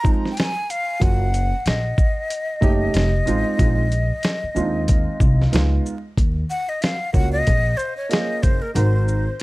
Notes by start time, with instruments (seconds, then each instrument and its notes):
Already playing: flute A#5
0.03 upright piano F3 G#3 C4 D#4, kick, shaker
0.25 snare
0.32 flute G5
0.37 flute G#5, snare, closed hi-hat
0.70 flute F5, closed hi-hat, shaker
1.00 upright bass F#1, upright piano F#3 A#3 C#4 F4, flute F#5, kick, closed hi-hat
1.34 closed hi-hat, shaker
1.66 upright bass A#1, flute D#5, snare, closed hi-hat
1.98 kick, shaker
2.30 closed hi-hat
2.61 upright bass F#1, upright piano A3 C#4 D#4 G4, kick, shaker
2.94 upright bass F1, snare, closed hi-hat
3.26 upright bass A1, upright piano G#3 C4 D#4 F4, closed hi-hat, shaker
3.57 upright bass A#1, upright piano G#3 C4 D#4 F4, kick, closed hi-hat
3.92 closed hi-hat, shaker
4.23 snare, closed hi-hat
4.43 muted upright bass stroke
4.55 upright bass D#2, upright piano G#3 C4 D4 F4, shaker
4.62 upright piano D#4
4.88 kick, closed hi-hat
5.20 upright bass C2, kick, shaker
5.41 snare
5.52 upright bass C#2, upright piano G#3 B3 D#4 F4, snare, closed hi-hat
5.86 shaker
6.18 upright bass D#2, kick, closed hi-hat
6.50 flute F#5, shaker
6.69 flute D#5
6.82 flute F5, snare, closed hi-hat
7.13 upright bass C#2, upright piano A#3 C#4 F4 F#4, flute F#5, kick, shaker
7.32 flute D#5
7.47 upright bass A#1, kick, closed hi-hat
7.77 flute C5, shaker
7.97 flute C#5
8.09 upright piano A#3 C#4 F4 G#4, flute D#5, closed hi-hat
8.13 snare
8.43 upright bass F#1, flute C5, kick, closed hi-hat, shaker
8.62 flute A#4
8.74 upright bass G#1, upright piano C4 D#4 F#4 A#4, flute C5, closed hi-hat
9.08 shaker